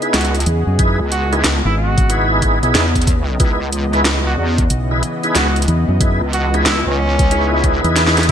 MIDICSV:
0, 0, Header, 1, 7, 480
1, 0, Start_track
1, 0, Key_signature, 4, "minor"
1, 0, Tempo, 652174
1, 582, Time_signature, 4, 2, 24, 8
1, 6121, End_track
2, 0, Start_track
2, 0, Title_t, "Tonewheel organ"
2, 0, Program_c, 0, 16
2, 16, Note_on_c, 0, 63, 89
2, 16, Note_on_c, 0, 64, 84
2, 16, Note_on_c, 0, 68, 83
2, 16, Note_on_c, 0, 71, 95
2, 191, Note_off_c, 0, 63, 0
2, 191, Note_off_c, 0, 64, 0
2, 191, Note_off_c, 0, 68, 0
2, 191, Note_off_c, 0, 71, 0
2, 580, Note_on_c, 0, 68, 85
2, 581, Note_on_c, 0, 63, 92
2, 581, Note_on_c, 0, 64, 86
2, 581, Note_on_c, 0, 71, 105
2, 732, Note_off_c, 0, 63, 0
2, 732, Note_off_c, 0, 64, 0
2, 732, Note_off_c, 0, 68, 0
2, 732, Note_off_c, 0, 71, 0
2, 975, Note_on_c, 0, 68, 82
2, 975, Note_on_c, 0, 71, 106
2, 976, Note_on_c, 0, 63, 96
2, 976, Note_on_c, 0, 64, 87
2, 1061, Note_off_c, 0, 63, 0
2, 1061, Note_off_c, 0, 64, 0
2, 1061, Note_off_c, 0, 68, 0
2, 1061, Note_off_c, 0, 71, 0
2, 1543, Note_on_c, 0, 63, 96
2, 1543, Note_on_c, 0, 68, 87
2, 1543, Note_on_c, 0, 71, 106
2, 1544, Note_on_c, 0, 64, 84
2, 1905, Note_off_c, 0, 63, 0
2, 1905, Note_off_c, 0, 64, 0
2, 1905, Note_off_c, 0, 68, 0
2, 1905, Note_off_c, 0, 71, 0
2, 1935, Note_on_c, 0, 68, 80
2, 1936, Note_on_c, 0, 63, 86
2, 1936, Note_on_c, 0, 64, 77
2, 1936, Note_on_c, 0, 71, 99
2, 2110, Note_off_c, 0, 68, 0
2, 2111, Note_off_c, 0, 63, 0
2, 2111, Note_off_c, 0, 64, 0
2, 2111, Note_off_c, 0, 71, 0
2, 2501, Note_on_c, 0, 63, 82
2, 2501, Note_on_c, 0, 68, 73
2, 2501, Note_on_c, 0, 71, 91
2, 2502, Note_on_c, 0, 64, 75
2, 2652, Note_off_c, 0, 68, 0
2, 2653, Note_off_c, 0, 63, 0
2, 2653, Note_off_c, 0, 64, 0
2, 2653, Note_off_c, 0, 71, 0
2, 2896, Note_on_c, 0, 63, 86
2, 2896, Note_on_c, 0, 64, 77
2, 2896, Note_on_c, 0, 71, 93
2, 2897, Note_on_c, 0, 68, 80
2, 2982, Note_off_c, 0, 63, 0
2, 2982, Note_off_c, 0, 64, 0
2, 2982, Note_off_c, 0, 68, 0
2, 2982, Note_off_c, 0, 71, 0
2, 3614, Note_on_c, 0, 63, 71
2, 3615, Note_on_c, 0, 64, 67
2, 3615, Note_on_c, 0, 68, 68
2, 3615, Note_on_c, 0, 71, 79
2, 3701, Note_off_c, 0, 63, 0
2, 3701, Note_off_c, 0, 64, 0
2, 3701, Note_off_c, 0, 68, 0
2, 3701, Note_off_c, 0, 71, 0
2, 3855, Note_on_c, 0, 64, 79
2, 3855, Note_on_c, 0, 68, 78
2, 3855, Note_on_c, 0, 71, 98
2, 3856, Note_on_c, 0, 63, 88
2, 4030, Note_off_c, 0, 68, 0
2, 4030, Note_off_c, 0, 71, 0
2, 4031, Note_off_c, 0, 63, 0
2, 4031, Note_off_c, 0, 64, 0
2, 4423, Note_on_c, 0, 63, 93
2, 4423, Note_on_c, 0, 64, 84
2, 4423, Note_on_c, 0, 68, 82
2, 4423, Note_on_c, 0, 71, 100
2, 4573, Note_off_c, 0, 63, 0
2, 4573, Note_off_c, 0, 64, 0
2, 4573, Note_off_c, 0, 68, 0
2, 4573, Note_off_c, 0, 71, 0
2, 4816, Note_on_c, 0, 68, 87
2, 4816, Note_on_c, 0, 71, 103
2, 4817, Note_on_c, 0, 63, 91
2, 4817, Note_on_c, 0, 64, 87
2, 4902, Note_off_c, 0, 63, 0
2, 4902, Note_off_c, 0, 64, 0
2, 4902, Note_off_c, 0, 68, 0
2, 4902, Note_off_c, 0, 71, 0
2, 5383, Note_on_c, 0, 71, 105
2, 5384, Note_on_c, 0, 64, 85
2, 5385, Note_on_c, 0, 63, 95
2, 5385, Note_on_c, 0, 68, 90
2, 6082, Note_off_c, 0, 63, 0
2, 6082, Note_off_c, 0, 64, 0
2, 6082, Note_off_c, 0, 71, 0
2, 6083, Note_off_c, 0, 68, 0
2, 6121, End_track
3, 0, Start_track
3, 0, Title_t, "Trumpet"
3, 0, Program_c, 1, 56
3, 101, Note_on_c, 1, 66, 90
3, 263, Note_off_c, 1, 66, 0
3, 821, Note_on_c, 1, 66, 95
3, 983, Note_off_c, 1, 66, 0
3, 1213, Note_on_c, 1, 64, 93
3, 1284, Note_off_c, 1, 64, 0
3, 1302, Note_on_c, 1, 66, 91
3, 1695, Note_off_c, 1, 66, 0
3, 3136, Note_on_c, 1, 66, 91
3, 3191, Note_off_c, 1, 66, 0
3, 3221, Note_on_c, 1, 66, 76
3, 3319, Note_off_c, 1, 66, 0
3, 3942, Note_on_c, 1, 66, 92
3, 4104, Note_off_c, 1, 66, 0
3, 4660, Note_on_c, 1, 66, 93
3, 4823, Note_off_c, 1, 66, 0
3, 4899, Note_on_c, 1, 64, 89
3, 5023, Note_off_c, 1, 64, 0
3, 5054, Note_on_c, 1, 61, 104
3, 5713, Note_off_c, 1, 61, 0
3, 6121, End_track
4, 0, Start_track
4, 0, Title_t, "Analog synth pad"
4, 0, Program_c, 2, 89
4, 0, Note_on_c, 2, 49, 85
4, 0, Note_on_c, 2, 59, 74
4, 0, Note_on_c, 2, 68, 95
4, 0, Note_on_c, 2, 75, 77
4, 2501, Note_on_c, 2, 52, 93
4, 2504, Note_off_c, 2, 68, 0
4, 6121, Note_off_c, 2, 49, 0
4, 6121, Note_off_c, 2, 52, 0
4, 6121, Note_off_c, 2, 59, 0
4, 6121, Note_off_c, 2, 75, 0
4, 6121, End_track
5, 0, Start_track
5, 0, Title_t, "Fingered electric bass"
5, 0, Program_c, 3, 33
5, 342, Note_on_c, 3, 40, 98
5, 470, Note_off_c, 3, 40, 0
5, 493, Note_on_c, 3, 42, 98
5, 710, Note_off_c, 3, 42, 0
5, 1215, Note_on_c, 3, 32, 95
5, 1911, Note_off_c, 3, 32, 0
5, 1935, Note_on_c, 3, 35, 98
5, 2008, Note_off_c, 3, 35, 0
5, 3462, Note_on_c, 3, 35, 92
5, 3688, Note_off_c, 3, 35, 0
5, 4181, Note_on_c, 3, 40, 98
5, 4310, Note_off_c, 3, 40, 0
5, 4331, Note_on_c, 3, 42, 100
5, 4549, Note_off_c, 3, 42, 0
5, 5773, Note_on_c, 3, 40, 98
5, 6121, Note_off_c, 3, 40, 0
5, 6121, End_track
6, 0, Start_track
6, 0, Title_t, "Wobble bass"
6, 0, Program_c, 4, 39
6, 101, Note_on_c, 4, 37, 96
6, 328, Note_off_c, 4, 37, 0
6, 733, Note_on_c, 4, 37, 90
6, 1047, Note_off_c, 4, 37, 0
6, 1062, Note_on_c, 4, 37, 96
6, 1190, Note_off_c, 4, 37, 0
6, 2021, Note_on_c, 4, 40, 99
6, 2488, Note_off_c, 4, 40, 0
6, 2502, Note_on_c, 4, 37, 90
6, 3208, Note_off_c, 4, 37, 0
6, 3221, Note_on_c, 4, 40, 99
6, 3448, Note_off_c, 4, 40, 0
6, 3940, Note_on_c, 4, 37, 99
6, 4167, Note_off_c, 4, 37, 0
6, 4572, Note_on_c, 4, 37, 98
6, 4887, Note_off_c, 4, 37, 0
6, 4899, Note_on_c, 4, 37, 98
6, 5029, Note_off_c, 4, 37, 0
6, 5052, Note_on_c, 4, 37, 99
6, 5749, Note_off_c, 4, 37, 0
6, 6121, End_track
7, 0, Start_track
7, 0, Title_t, "Drums"
7, 15, Note_on_c, 9, 42, 37
7, 89, Note_off_c, 9, 42, 0
7, 102, Note_on_c, 9, 38, 123
7, 102, Note_on_c, 9, 42, 80
7, 153, Note_off_c, 9, 42, 0
7, 153, Note_on_c, 9, 42, 66
7, 176, Note_off_c, 9, 38, 0
7, 181, Note_off_c, 9, 42, 0
7, 181, Note_on_c, 9, 42, 51
7, 254, Note_off_c, 9, 42, 0
7, 254, Note_on_c, 9, 42, 52
7, 261, Note_off_c, 9, 42, 0
7, 261, Note_on_c, 9, 42, 35
7, 297, Note_off_c, 9, 42, 0
7, 297, Note_on_c, 9, 42, 64
7, 312, Note_off_c, 9, 42, 0
7, 312, Note_on_c, 9, 42, 29
7, 341, Note_off_c, 9, 42, 0
7, 341, Note_on_c, 9, 42, 69
7, 415, Note_off_c, 9, 42, 0
7, 581, Note_on_c, 9, 36, 115
7, 581, Note_on_c, 9, 42, 82
7, 654, Note_off_c, 9, 42, 0
7, 655, Note_off_c, 9, 36, 0
7, 822, Note_on_c, 9, 42, 66
7, 896, Note_off_c, 9, 42, 0
7, 976, Note_on_c, 9, 37, 51
7, 976, Note_on_c, 9, 42, 37
7, 1049, Note_off_c, 9, 37, 0
7, 1049, Note_off_c, 9, 42, 0
7, 1062, Note_on_c, 9, 38, 123
7, 1062, Note_on_c, 9, 42, 83
7, 1136, Note_off_c, 9, 38, 0
7, 1136, Note_off_c, 9, 42, 0
7, 1454, Note_on_c, 9, 36, 107
7, 1455, Note_on_c, 9, 42, 63
7, 1528, Note_off_c, 9, 36, 0
7, 1528, Note_off_c, 9, 42, 0
7, 1543, Note_on_c, 9, 42, 77
7, 1616, Note_off_c, 9, 42, 0
7, 1782, Note_on_c, 9, 36, 65
7, 1782, Note_on_c, 9, 37, 50
7, 1782, Note_on_c, 9, 42, 67
7, 1855, Note_off_c, 9, 36, 0
7, 1856, Note_off_c, 9, 37, 0
7, 1856, Note_off_c, 9, 42, 0
7, 1935, Note_on_c, 9, 42, 37
7, 2009, Note_off_c, 9, 42, 0
7, 2022, Note_on_c, 9, 38, 126
7, 2022, Note_on_c, 9, 42, 82
7, 2096, Note_off_c, 9, 38, 0
7, 2096, Note_off_c, 9, 42, 0
7, 2174, Note_on_c, 9, 36, 61
7, 2176, Note_on_c, 9, 42, 48
7, 2219, Note_off_c, 9, 42, 0
7, 2219, Note_on_c, 9, 42, 62
7, 2248, Note_off_c, 9, 36, 0
7, 2261, Note_on_c, 9, 36, 107
7, 2263, Note_off_c, 9, 42, 0
7, 2263, Note_on_c, 9, 42, 65
7, 2335, Note_off_c, 9, 36, 0
7, 2336, Note_off_c, 9, 42, 0
7, 2501, Note_on_c, 9, 36, 118
7, 2502, Note_on_c, 9, 42, 79
7, 2575, Note_off_c, 9, 36, 0
7, 2576, Note_off_c, 9, 42, 0
7, 2742, Note_on_c, 9, 42, 63
7, 2815, Note_off_c, 9, 42, 0
7, 2895, Note_on_c, 9, 37, 50
7, 2895, Note_on_c, 9, 42, 35
7, 2968, Note_off_c, 9, 37, 0
7, 2968, Note_off_c, 9, 42, 0
7, 2981, Note_on_c, 9, 38, 120
7, 2981, Note_on_c, 9, 42, 78
7, 3055, Note_off_c, 9, 38, 0
7, 3055, Note_off_c, 9, 42, 0
7, 3373, Note_on_c, 9, 42, 62
7, 3374, Note_on_c, 9, 36, 105
7, 3447, Note_off_c, 9, 36, 0
7, 3447, Note_off_c, 9, 42, 0
7, 3460, Note_on_c, 9, 42, 76
7, 3534, Note_off_c, 9, 42, 0
7, 3700, Note_on_c, 9, 42, 64
7, 3774, Note_off_c, 9, 42, 0
7, 3853, Note_on_c, 9, 42, 36
7, 3926, Note_off_c, 9, 42, 0
7, 3940, Note_on_c, 9, 38, 117
7, 3940, Note_on_c, 9, 42, 74
7, 4014, Note_off_c, 9, 38, 0
7, 4014, Note_off_c, 9, 42, 0
7, 4094, Note_on_c, 9, 42, 47
7, 4137, Note_off_c, 9, 42, 0
7, 4137, Note_on_c, 9, 42, 62
7, 4181, Note_off_c, 9, 42, 0
7, 4181, Note_on_c, 9, 42, 62
7, 4254, Note_off_c, 9, 42, 0
7, 4420, Note_on_c, 9, 36, 109
7, 4421, Note_on_c, 9, 42, 80
7, 4494, Note_off_c, 9, 36, 0
7, 4494, Note_off_c, 9, 42, 0
7, 4660, Note_on_c, 9, 42, 63
7, 4734, Note_off_c, 9, 42, 0
7, 4813, Note_on_c, 9, 37, 54
7, 4813, Note_on_c, 9, 42, 36
7, 4887, Note_off_c, 9, 37, 0
7, 4887, Note_off_c, 9, 42, 0
7, 4900, Note_on_c, 9, 38, 121
7, 4900, Note_on_c, 9, 42, 76
7, 4973, Note_off_c, 9, 38, 0
7, 4973, Note_off_c, 9, 42, 0
7, 5293, Note_on_c, 9, 42, 63
7, 5294, Note_on_c, 9, 36, 102
7, 5367, Note_off_c, 9, 36, 0
7, 5367, Note_off_c, 9, 42, 0
7, 5381, Note_on_c, 9, 42, 74
7, 5454, Note_off_c, 9, 42, 0
7, 5621, Note_on_c, 9, 36, 59
7, 5621, Note_on_c, 9, 37, 54
7, 5621, Note_on_c, 9, 42, 65
7, 5694, Note_off_c, 9, 37, 0
7, 5694, Note_off_c, 9, 42, 0
7, 5695, Note_off_c, 9, 36, 0
7, 5773, Note_on_c, 9, 42, 37
7, 5847, Note_off_c, 9, 42, 0
7, 5861, Note_on_c, 9, 38, 109
7, 5861, Note_on_c, 9, 42, 76
7, 5934, Note_off_c, 9, 38, 0
7, 5934, Note_off_c, 9, 42, 0
7, 5941, Note_on_c, 9, 38, 93
7, 6013, Note_on_c, 9, 42, 48
7, 6014, Note_off_c, 9, 38, 0
7, 6021, Note_on_c, 9, 38, 74
7, 6057, Note_off_c, 9, 42, 0
7, 6057, Note_on_c, 9, 42, 62
7, 6094, Note_off_c, 9, 38, 0
7, 6121, Note_off_c, 9, 42, 0
7, 6121, End_track
0, 0, End_of_file